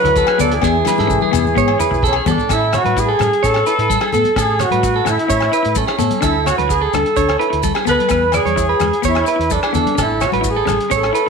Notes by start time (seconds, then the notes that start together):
Already playing: F#3 B4
0.04 D2 E4, closed hi-hat, low conga, maracas
0.16 A4, kick, closed hi-hat, maracas
0.27 G#4, cross-stick, low agogo
0.38 D2 F#3 B3 A4 D5, closed hi-hat, low conga, maracas
0.52 E3 G#4, closed hi-hat
0.62 E2 B3 G#4, kick, snare, low agogo, maracas
0.85 B4, snare, high conga, low agogo, maracas
0.98 G#2 A4, snare, high conga
1.07 C#4, kick, high tom, maracas
1.22 G#4, high conga
1.31 E2 B3, high tom, low conga, low agogo, maracas
1.45 mid tom, maracas
1.55 G#2 B3 C#5, kick, mid tom, maracas
1.68 low agogo
1.79 E4 B4, mid tom, maracas
1.91 B1 E4, mid tom, maracas
2.03 A4, kick, mid tom, maracas
2.07 C#4
2.13 G#4, low agogo
2.26 E3 B3 A4, floor tom, high conga, low conga, maracas
2.30 D4
2.38 floor tom, maracas
2.49 A2 C#4 E4 A4, kick, cross-stick, closed hi-hat, low conga, low agogo, maracas
2.73 F#4 C#5, cross-stick, closed hi-hat, low conga, low agogo, maracas
2.84 A2 B4, closed hi-hat, high conga
2.97 E4 G#4, kick, closed hi-hat, maracas
3.09 A4
3.19 A2 C#4, cross-stick, closed hi-hat, high conga, low conga, low agogo, maracas
3.33 closed hi-hat
3.43 A2 C#4 A4 C#5, kick, closed hi-hat, maracas
3.54 cross-stick, low agogo
3.66 E4 B4, closed hi-hat, maracas
3.78 A2 E4, closed hi-hat
3.90 A4, kick, closed hi-hat, high conga, maracas
4.01 G#4, cross-stick, low agogo
4.12 A2 B3 A4, closed hi-hat, low conga, maracas
4.24 closed hi-hat, high conga
4.36 A2 C#4 G#4 A4, kick, cross-stick, closed hi-hat, low conga, low agogo, maracas
4.59 F#4 C#5, cross-stick, closed hi-hat, low conga, low agogo, maracas
4.71 A2 B4, closed hi-hat, high conga
4.83 muted clean electric guitar stroke, kick, closed hi-hat, maracas
4.96 A4
5.05 A2 C#4 E4, cross-stick, closed hi-hat, low conga, low agogo, maracas
5.19 closed hi-hat
5.28 A2 C#4 C#5, kick, closed hi-hat, maracas
5.40 cross-stick, low agogo
5.52 E4 B4, closed hi-hat, maracas
5.63 A2 E4, closed hi-hat
5.75 C#4 A4, kick, closed hi-hat, high conga, maracas
5.87 G#4, cross-stick, low agogo
5.99 A2 B3 A4, closed hi-hat, low conga, maracas
6.11 closed hi-hat, high conga
6.21 D2 D4 E4 A4, kick, cross-stick, closed hi-hat, low conga, low agogo, maracas
6.46 F#4 C#5, cross-stick, closed hi-hat, low conga, low agogo, maracas
6.58 D2 B4, closed hi-hat, high conga
6.69 G#4, muted clean electric guitar stroke, kick, closed hi-hat, maracas
6.82 A4
6.93 D2 D4 A4, cross-stick, closed hi-hat, high conga, low conga, low agogo, maracas
7.06 closed hi-hat
7.17 D2 D4 C#5, kick, closed hi-hat, maracas
7.29 cross-stick, low agogo
7.39 E4 B4, closed hi-hat
7.50 D2 E4, closed hi-hat
7.63 A4, kick, closed hi-hat, high conga, maracas
7.75 G#4, cross-stick, low agogo
7.85 D2 B3 A4 B4, closed hi-hat, low conga, maracas
8.00 closed hi-hat, high conga
8.09 E2 B3 B4, kick, cross-stick, closed hi-hat, low agogo, maracas
8.32 D5, cross-stick, closed hi-hat, low conga, low agogo, maracas
8.37 G#4
8.45 E2 C#5, closed hi-hat, high conga
8.56 E4, kick, closed hi-hat, maracas
8.69 B4
8.80 E2 G#3, cross-stick, closed hi-hat, low conga, low agogo, maracas
8.93 closed hi-hat
9.02 E2 B3 C#5, kick, closed hi-hat, maracas
9.08 E4
9.15 cross-stick, low agogo
9.25 E4 B4, closed hi-hat, maracas
9.36 E2 E4
9.41 closed hi-hat
9.50 D4 A4, kick, closed hi-hat, high conga, maracas
9.63 G#4, cross-stick, low agogo
9.73 E2 B3 A4, closed hi-hat, low conga, maracas
9.86 closed hi-hat, high conga
9.95 A1 C#4 A4, kick, cross-stick, closed hi-hat, low conga, low agogo, maracas
10.02 E4
10.21 C#5, cross-stick, closed hi-hat, low conga, low agogo, maracas
10.26 F#4
10.32 A1 B4, closed hi-hat, high conga
10.41 E4, kick, closed hi-hat, maracas
10.50 G#4
10.56 A4
10.65 A1 C#4, cross-stick, closed hi-hat, high conga, low conga, low agogo, maracas
10.80 closed hi-hat
10.90 A1 C#4 C#5, kick, closed hi-hat, maracas
10.96 A4
11.03 cross-stick, low agogo
11.13 E4 B4, closed hi-hat, maracas